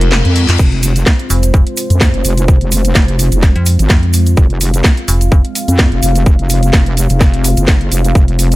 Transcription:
Already playing: F1 G#3 C4 F4 A#4, reverse cymbal
0.01 closed hi-hat
0.12 snare, clap
0.25 F2, closed hi-hat
0.36 open hi-hat
0.49 F2, clap, closed hi-hat
0.59 F1 C5, kick, crash, shaker
0.72 closed hi-hat
0.83 open hi-hat, shaker
0.96 closed hi-hat, shaker
1.06 kick, snare, shaker
1.19 closed hi-hat
1.30 F1, open hi-hat, shaker
1.43 closed hi-hat, shaker
1.54 F1, kick, shaker
1.67 closed hi-hat
1.77 open hi-hat, shaker
1.90 F2, closed hi-hat, shaker
2.01 kick, snare, shaker
2.14 F1, closed hi-hat
2.25 F1, open hi-hat, shaker
2.37 closed hi-hat, shaker
2.48 kick, shaker
2.61 F1, closed hi-hat
2.72 open hi-hat, shaker
2.84 closed hi-hat, shaker
2.95 F1, kick, snare, shaker
3.08 closed hi-hat
3.19 open hi-hat, shaker
3.32 F1, closed hi-hat, shaker
3.42 kick, snare, shaker
3.56 F2, closed hi-hat
3.66 open hi-hat, shaker
3.79 G#1, closed hi-hat, shaker
3.90 F2, kick, snare, shaker
4.03 closed hi-hat
4.13 open hi-hat, shaker
4.26 closed hi-hat, shaker
4.37 F1 F5, kick, shaker
4.50 closed hi-hat
4.61 open hi-hat, shaker
4.74 closed hi-hat, shaker
4.84 kick, snare, shaker
4.97 closed hi-hat
5.08 F1, open hi-hat, shaker
5.21 closed hi-hat, shaker
5.32 kick, shaker
5.45 closed hi-hat
5.55 open hi-hat, shaker
5.68 F2, closed hi-hat, shaker
5.79 kick, snare, shaker
5.92 F1, closed hi-hat
6.03 F1, open hi-hat, shaker
6.15 closed hi-hat, shaker
6.26 kick, shaker
6.39 F1, closed hi-hat
6.49 open hi-hat, shaker
6.63 closed hi-hat, shaker
6.73 F1, kick, snare, shaker
6.86 closed hi-hat
6.97 open hi-hat, shaker
7.09 F1, closed hi-hat, shaker
7.21 kick, snare, shaker
7.34 closed hi-hat
7.44 open hi-hat, shaker
7.57 F#1, closed hi-hat, shaker
7.68 kick, snare, shaker
7.81 closed hi-hat
7.92 F1, open hi-hat, shaker
8.04 closed hi-hat, shaker
8.15 F1 C5, kick, shaker
8.28 closed hi-hat
8.39 open hi-hat, shaker
8.52 closed hi-hat, shaker

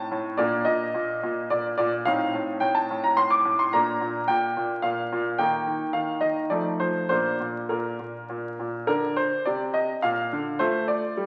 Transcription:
Already playing: A2 C4 D#4 A5
0.12 A2
0.37 A#2 A#3 D4 D5
0.65 A#2 D#5
0.94 A#2
1.23 A#2
1.50 A#2 D5
1.78 A#2 D5
2.05 A2 C4 D#4 F5
2.34 A2
2.60 A2 G5
2.75 A5
2.91 A2
3.04 A#5
3.17 A2 C6
3.30 D6
3.45 A2
3.59 C6
3.73 A#2 A#3 D4 A#5
4.01 A#2
4.28 A#2 G5
4.57 A#2
4.82 A#2 F5
5.13 A#2
5.38 D#3 A#3 D#4 G5
5.67 D#3
5.93 D#3 F5
6.21 D#3 D#5
6.50 F3 A3 D#4 D5
6.80 F3 C5
7.09 A#2 A#3 D4 C5
7.40 A#2
7.69 A#2 A#4
8.00 A#2
8.30 A#2
8.60 A#2
8.87 D3 D4 A#4
9.16 C5
9.45 C3 D5
9.74 D#5
10.02 A#2 F5
10.33 D3
10.59 A3 F4 C5
10.88 D5
11.17 G3

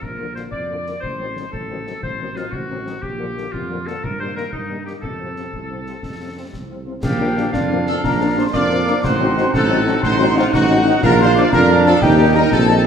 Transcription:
0.02 A#1 A#4, concert bass drum
0.19 D3 F3 A#3 F4
0.35 D3 F3 A#3 F4 C5, snare
0.52 F2 D5, concert bass drum
0.69 D3 F3 A#3 F4
0.86 D3 F3 A#3 F4, snare
1.01 A1 C5, concert bass drum
1.19 D#3 F#3 C4 D#4
1.35 D#3 F#3 C4 D#4, snare
1.52 A1 A4, concert bass drum
1.69 D#3 F#3 C4 D#4
1.86 D#3 F#3 C4 D#4, snare
2.03 A1 C5, concert bass drum
2.20 D#3 F#3 C4 D#4
2.36 D#3 F#3 C4 D#4 F4, snare
2.52 A1 F#4, concert bass drum
2.69 D#3 F#3 C4 D#4
2.86 D#3 F#3 C4 D#4, snare
3.02 A#1 G4, concert bass drum
3.18 D3 F3 A#3 F4
3.36 D3 F3 A#3 F4, snare
3.52 F2 F4, concert bass drum
3.69 D3 F3 A#3 F4
3.86 D3 F3 A#3 F4 A4, snare
4.04 G2 A#4, concert bass drum
4.20 D#3 G3 A#3 D#4 C5
4.36 D#3 G3 A#3 D#4 A#4, snare
4.52 G2 D#4, concert bass drum
4.70 D#3 G3 A#3 D#4
4.86 D#3 G3 A#3 D#4 G4, snare
5.01 F2 A4, concert bass drum
5.20 C3 C4 F4
5.36 C3 C4 F4, snare
5.53 C2, concert bass drum
5.70 C3 C4 F4
5.86 C3 C4 F4, snare
6.03 F2, concert bass drum, snare
6.20 C3 C4 F4
6.37 C3 C4 F4
6.53 C2, concert bass drum, snare
6.69 C3 C4 F4
6.86 C3 C4 F4
7.02 A#1 A#3 D4 G4 F5 G5, concert bass drum, snare, crash
7.20 F3 A#3 D4
7.37 F3 A#3 D4, snare
7.53 F2 D4 F4 F5, concert bass drum, snare
7.71 F3 A#3 D4
7.87 F3 A#3 D4 A4 A5, snare
8.04 A#1 D4 A#4 F5 A#5, concert bass drum, snare
8.20 F3 A#3 D4
8.37 F3 A#3 D4 C5 C6
8.52 F2 A#3 D4 D5 F5 D6, concert bass drum, snare
8.70 F3 A#3 D4
8.87 F3 A#3 D4, snare
9.03 A1 C4 D#4 C5 F#5 C6, concert bass drum, snare, crash
9.19 F#3 C4 D#4
9.37 F#3 C4 D#4, snare
9.53 A1 D#4 A4 F#5 A5, concert bass drum, snare
9.70 F#3 C4 D#4
9.86 F#3 C4 D#4, snare
10.02 A1 D#4 C5 F#5 C6, concert bass drum, snare
10.19 F#3 C4 D#4
10.36 F#3 C4 D#4 F4 F5
10.53 A1 D#4 F#4 F#5, concert bass drum, snare
10.69 F#3 C4 D#4
10.85 F#3 C4 D#4, snare
11.03 A#1 D4 F4 A#4 F5 A#5, concert bass drum, snare, crash
11.20 F3 D4 F4 C5 C6
11.36 F3 D4 F4 D5 D6, snare
11.51 F2 D4 A#4 F5 A#5, concert bass drum, snare
11.69 F3 D4 F4
11.84 F3 D4 F4 A4 A5, snare
12.01 D#2 D#4 G4 G5, concert bass drum, snare
12.17 G3 A#3 D#4
12.35 G3 A#3 D#4 A#4 A#5
12.52 A#1 C4 A4 A5, concert bass drum, snare
12.67 G3 A#3 D#4 A5

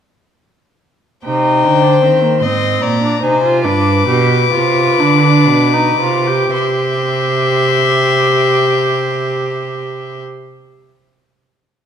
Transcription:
1.25 C3 D#4 C5 G5
1.64 D3
1.83 D4
2.02 D#3 C4
2.22 A#3
2.41 G#2 C4 D#5 C6
2.81 A#2 D5 A#5
3.03 D4
3.22 C3 D#4 C5 G#5
3.44 F4
3.64 G2 D4 B4 D6
4.08 B2 G4
4.53 C3 F4
4.99 D3 D4
5.48 B2
5.74 D#4
5.99 C3 F4
6.27 G4
6.53 C3 G4 E5 C6

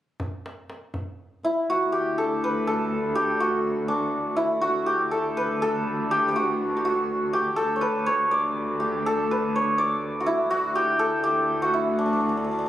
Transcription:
0.20 tombak dum
0.46 tombak tek
0.70 tombak tek
0.94 tombak dum
1.43 E4, tombak ka
1.70 D2 F#4
1.92 G4
2.18 A4
2.44 B4
2.67 A4
3.15 G4
3.40 F#4
3.88 D4
4.36 E4
4.61 D2 F#4
4.86 G4
5.11 A4
5.37 B4
5.62 A4
6.11 G4
6.28 G4
6.36 F#4
6.77 G4
6.85 F#4
7.33 G4
7.56 D2 A4
7.76 C#5
7.81 B4
8.06 C#5
8.31 D5
8.80 G4
9.06 A4
9.31 B4
9.56 C#5
9.78 D5
10.20 F#4
10.26 E4
10.50 D2 F#4
10.75 G4
10.99 A4
11.24 G4
11.62 F#4
11.74 E4
11.99 D4
12.06 D4
12.13 D4
12.20 D4
12.29 D4
12.37 D4
12.44 D4
12.51 D4
12.59 D4

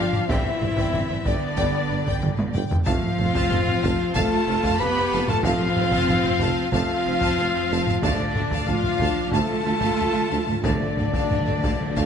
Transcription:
Already playing: F3 D4 F4 D5 F5 G5
0.12 G1 D5 G5, taiko low-mid
0.27 G1 D3 E3 G3 C4 E4 D5 E5 G5, taiko
0.45 taiko low-mid
0.61 G1 B4 D5, taiko low-mid
0.76 G1 D5 G5, taiko
0.93 G1 D5 G5, taiko low-mid
1.09 G1 B4 D5, taiko low-mid
1.25 G1 D3 B3 D4 D5 G5, taiko
1.57 G1 D3 G3 D5 G5, taiko
1.89 G1 B4 D5
2.05 G1 D5 G5, taiko
2.21 G1 D5 G5, taiko mid
2.37 G1 B4 D5, taiko high
2.53 G1 D5 G5, taiko low-mid
2.68 G1 D5 G5, taiko low
2.84 F1 F3 A3 C4 F4 F5 A5, taiko
3.03 taiko low-mid
3.18 F1 C5 F5, taiko low-mid
3.34 F1 F5 A5, taiko
3.51 F1 F5 A5, taiko low-mid
3.66 F1 C5 F5, taiko low-mid
3.83 F1 F5 A5, taiko
4.14 F1 F3 A3 F4 A4 F5 A5, taiko
4.47 F1 C5 F5
4.62 F1 F5 A5, taiko
4.78 F1 B3 G4 B4 F5 A5 B5
4.96 F1 C5 F5
5.12 F1 F5 A5
5.27 F1 A3 F4 A4 F5 A5, taiko low-mid
5.43 F1 F3 A3 C4 F4 F5 A5, taiko
5.60 taiko low-mid
5.76 F1 C5 F5, taiko low-mid
5.91 F1 F5 A5, taiko
6.08 F1 F5 A5, taiko low-mid
6.24 F1 C5 F5, taiko low-mid
6.40 F1 F5 A5, taiko
6.71 F1 F3 A3 C4 F4 F5 A5, taiko
7.06 F1 C5 F5
7.21 F1 F5 A5, taiko
7.38 F1 F5 A5
7.54 F1 C5 F5
7.70 F1 F5 A5
7.87 F1 F5 A5, taiko low-mid
8.02 D2 D3 F3 A3 D4 D5 F5 A5, taiko
8.18 D3, taiko low-mid
8.25 D3
8.35 D2 E5 F5, taiko low-mid
8.47 D3, taiko
8.51 D2 F5 A5
8.62 D3
8.66 D2 D3 F3 D4 F4 F5 A5, taiko low-mid
8.77 D3
8.83 D2 D3 E5 F5, taiko low-mid
8.91 D3
8.99 D2 D3 F5 A5, taiko
9.14 D3
9.22 D3
9.30 D2 D3 F3 A3 F4 F5 A5, taiko
9.34 D3 A4 A5
9.45 D3
9.53 D3
9.61 D3
9.66 D2 D3 E5 F5
9.76 D3
9.81 D2 D3 F5 A5, taiko
9.92 D3
9.97 D2 D3 F5 A5
10.06 D3
10.12 D2 D3 E5 F5
10.22 D3
10.30 D2 D3 F5 A5
10.36 D3
10.43 D3 F5 A5, taiko low-mid
10.48 D2 D3
10.59 D3 A3 D5 F5 A5
10.64 D2 D3 F3 A3 D4 D5, taiko, cymbal swell
10.75 D3
10.80 D3, taiko low-mid
10.90 D3
10.97 D2 D3 E5 F5, taiko low-mid
11.06 D3
11.13 D2 D3 F5 A5, taiko
11.20 D3
11.30 D2 D3 F5 A5, taiko low-mid
11.35 D3
11.42 D3 E5 F5
11.48 D2 D3, taiko low-mid
11.58 D3 A5
11.62 D2 D3 F5, taiko
11.73 D3
11.81 D3
11.89 D3
11.96 D2 D3 F3 A3 F5 A5, taiko

